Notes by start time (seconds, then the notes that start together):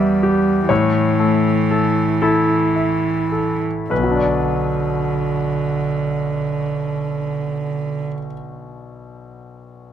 Already playing: E2 G3 G4 B4 D5 E5
0.23 G4
0.69 A2 E3 C#5
1.19 A3
1.71 A4
2.22 E4 A4
2.76 E5
3.32 A4
3.90 B1 D3 B4
3.96 B2
4.04 F#3
4.11 D4
4.17 D5